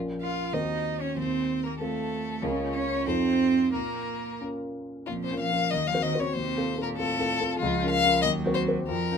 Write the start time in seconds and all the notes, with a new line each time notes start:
Already playing: A#1 C#4 F4 A#4
0.21 F4 F5
0.53 D#2 C4 D#4 F#4 C5 D#5
1.00 C#4 C#5
1.16 D#2 C4 C5
1.63 A#3 A#4
1.79 A3 C4 F4 A4
2.42 C#2 C#3 A#3 C#4 F4 A#4
2.73 C#4 C#5
3.06 F2 C4 D#4 F4 A4 C5
3.73 A#2 A#3 A#4
4.41 C#4 F4 A#4
5.06 F2 A#2 F4
5.24 C3 C5
5.31 C#4 F4 A#4
5.38 F3 F5
5.51 C#4 F4 A#4
5.71 D#2 D#3 D#5
5.87 F3 F5
5.94 C4 F#4 C5
6.02 D#3 D#5
6.15 C4 F#4 C5
6.20 C#3 C#5
6.33 D#2 C3 C5
6.57 C4 F4 A4
6.77 C4 F4 A4
6.81 A#2 A#4
6.96 A2 C4 F4 A4
7.19 C4 F4 A4
7.40 C4 F4 A4
7.59 C#2 F3 F4
7.83 C#4 F4 A#4
7.90 F5
8.04 C#4 F4 A#4
8.22 D#2 F#3 D#5
8.46 C4 F#4 C5
8.54 C5
8.68 C4 F#4 C5
8.87 F2 F3 A#4
9.12 C#4 F4 A#4